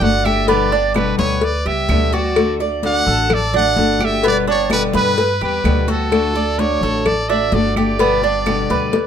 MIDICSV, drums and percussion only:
0, 0, Header, 1, 2, 480
1, 0, Start_track
1, 0, Tempo, 469484
1, 499, Time_signature, 4, 2, 24, 8
1, 9271, End_track
2, 0, Start_track
2, 0, Title_t, "Drums"
2, 12, Note_on_c, 9, 56, 66
2, 20, Note_on_c, 9, 63, 86
2, 115, Note_off_c, 9, 56, 0
2, 122, Note_off_c, 9, 63, 0
2, 262, Note_on_c, 9, 63, 81
2, 263, Note_on_c, 9, 75, 66
2, 364, Note_off_c, 9, 63, 0
2, 365, Note_off_c, 9, 75, 0
2, 491, Note_on_c, 9, 56, 110
2, 593, Note_off_c, 9, 56, 0
2, 742, Note_on_c, 9, 63, 34
2, 844, Note_off_c, 9, 63, 0
2, 965, Note_on_c, 9, 56, 75
2, 978, Note_on_c, 9, 63, 102
2, 979, Note_on_c, 9, 75, 77
2, 1067, Note_off_c, 9, 56, 0
2, 1080, Note_off_c, 9, 63, 0
2, 1082, Note_off_c, 9, 75, 0
2, 1214, Note_on_c, 9, 56, 70
2, 1216, Note_on_c, 9, 63, 91
2, 1316, Note_off_c, 9, 56, 0
2, 1318, Note_off_c, 9, 63, 0
2, 1446, Note_on_c, 9, 56, 95
2, 1466, Note_on_c, 9, 63, 37
2, 1548, Note_off_c, 9, 56, 0
2, 1568, Note_off_c, 9, 63, 0
2, 1698, Note_on_c, 9, 63, 36
2, 1800, Note_off_c, 9, 63, 0
2, 1929, Note_on_c, 9, 56, 65
2, 1933, Note_on_c, 9, 63, 89
2, 1939, Note_on_c, 9, 75, 71
2, 2031, Note_off_c, 9, 56, 0
2, 2036, Note_off_c, 9, 63, 0
2, 2041, Note_off_c, 9, 75, 0
2, 2172, Note_on_c, 9, 63, 67
2, 2174, Note_on_c, 9, 56, 67
2, 2275, Note_off_c, 9, 63, 0
2, 2276, Note_off_c, 9, 56, 0
2, 2416, Note_on_c, 9, 56, 104
2, 2416, Note_on_c, 9, 75, 66
2, 2417, Note_on_c, 9, 63, 34
2, 2518, Note_off_c, 9, 56, 0
2, 2518, Note_off_c, 9, 75, 0
2, 2520, Note_off_c, 9, 63, 0
2, 2659, Note_on_c, 9, 63, 35
2, 2762, Note_off_c, 9, 63, 0
2, 2891, Note_on_c, 9, 63, 55
2, 2896, Note_on_c, 9, 56, 78
2, 2994, Note_off_c, 9, 63, 0
2, 2998, Note_off_c, 9, 56, 0
2, 3144, Note_on_c, 9, 63, 32
2, 3246, Note_off_c, 9, 63, 0
2, 3373, Note_on_c, 9, 56, 99
2, 3376, Note_on_c, 9, 75, 72
2, 3378, Note_on_c, 9, 63, 32
2, 3378, Note_on_c, 9, 64, 88
2, 3475, Note_off_c, 9, 56, 0
2, 3479, Note_off_c, 9, 75, 0
2, 3480, Note_off_c, 9, 63, 0
2, 3480, Note_off_c, 9, 64, 0
2, 3617, Note_on_c, 9, 63, 35
2, 3617, Note_on_c, 9, 64, 74
2, 3719, Note_off_c, 9, 63, 0
2, 3719, Note_off_c, 9, 64, 0
2, 3848, Note_on_c, 9, 63, 89
2, 3849, Note_on_c, 9, 56, 65
2, 3950, Note_off_c, 9, 63, 0
2, 3952, Note_off_c, 9, 56, 0
2, 4084, Note_on_c, 9, 63, 86
2, 4096, Note_on_c, 9, 75, 66
2, 4186, Note_off_c, 9, 63, 0
2, 4198, Note_off_c, 9, 75, 0
2, 4328, Note_on_c, 9, 63, 33
2, 4330, Note_on_c, 9, 56, 108
2, 4430, Note_off_c, 9, 63, 0
2, 4432, Note_off_c, 9, 56, 0
2, 4567, Note_on_c, 9, 63, 37
2, 4669, Note_off_c, 9, 63, 0
2, 4804, Note_on_c, 9, 63, 102
2, 4810, Note_on_c, 9, 56, 75
2, 4818, Note_on_c, 9, 75, 75
2, 4906, Note_off_c, 9, 63, 0
2, 4912, Note_off_c, 9, 56, 0
2, 4920, Note_off_c, 9, 75, 0
2, 5045, Note_on_c, 9, 63, 91
2, 5055, Note_on_c, 9, 56, 70
2, 5148, Note_off_c, 9, 63, 0
2, 5157, Note_off_c, 9, 56, 0
2, 5284, Note_on_c, 9, 63, 35
2, 5294, Note_on_c, 9, 56, 95
2, 5386, Note_off_c, 9, 63, 0
2, 5397, Note_off_c, 9, 56, 0
2, 5531, Note_on_c, 9, 63, 36
2, 5634, Note_off_c, 9, 63, 0
2, 5770, Note_on_c, 9, 63, 96
2, 5778, Note_on_c, 9, 56, 74
2, 5778, Note_on_c, 9, 75, 68
2, 5872, Note_off_c, 9, 63, 0
2, 5880, Note_off_c, 9, 56, 0
2, 5880, Note_off_c, 9, 75, 0
2, 6011, Note_on_c, 9, 63, 70
2, 6016, Note_on_c, 9, 56, 64
2, 6113, Note_off_c, 9, 63, 0
2, 6118, Note_off_c, 9, 56, 0
2, 6259, Note_on_c, 9, 56, 99
2, 6263, Note_on_c, 9, 75, 65
2, 6361, Note_off_c, 9, 56, 0
2, 6365, Note_off_c, 9, 75, 0
2, 6498, Note_on_c, 9, 63, 36
2, 6600, Note_off_c, 9, 63, 0
2, 6734, Note_on_c, 9, 63, 62
2, 6738, Note_on_c, 9, 56, 76
2, 6837, Note_off_c, 9, 63, 0
2, 6840, Note_off_c, 9, 56, 0
2, 6979, Note_on_c, 9, 63, 34
2, 7081, Note_off_c, 9, 63, 0
2, 7215, Note_on_c, 9, 56, 92
2, 7216, Note_on_c, 9, 75, 65
2, 7221, Note_on_c, 9, 63, 34
2, 7221, Note_on_c, 9, 64, 86
2, 7317, Note_off_c, 9, 56, 0
2, 7318, Note_off_c, 9, 75, 0
2, 7323, Note_off_c, 9, 63, 0
2, 7323, Note_off_c, 9, 64, 0
2, 7452, Note_on_c, 9, 63, 34
2, 7555, Note_off_c, 9, 63, 0
2, 7688, Note_on_c, 9, 56, 69
2, 7692, Note_on_c, 9, 63, 93
2, 7790, Note_off_c, 9, 56, 0
2, 7794, Note_off_c, 9, 63, 0
2, 7936, Note_on_c, 9, 63, 89
2, 7938, Note_on_c, 9, 75, 69
2, 8038, Note_off_c, 9, 63, 0
2, 8040, Note_off_c, 9, 75, 0
2, 8172, Note_on_c, 9, 56, 104
2, 8179, Note_on_c, 9, 63, 38
2, 8274, Note_off_c, 9, 56, 0
2, 8281, Note_off_c, 9, 63, 0
2, 8418, Note_on_c, 9, 63, 34
2, 8520, Note_off_c, 9, 63, 0
2, 8650, Note_on_c, 9, 56, 71
2, 8656, Note_on_c, 9, 75, 76
2, 8657, Note_on_c, 9, 63, 92
2, 8753, Note_off_c, 9, 56, 0
2, 8758, Note_off_c, 9, 75, 0
2, 8760, Note_off_c, 9, 63, 0
2, 8895, Note_on_c, 9, 56, 69
2, 8897, Note_on_c, 9, 63, 94
2, 8998, Note_off_c, 9, 56, 0
2, 8999, Note_off_c, 9, 63, 0
2, 9130, Note_on_c, 9, 56, 103
2, 9134, Note_on_c, 9, 63, 98
2, 9233, Note_off_c, 9, 56, 0
2, 9236, Note_off_c, 9, 63, 0
2, 9271, End_track
0, 0, End_of_file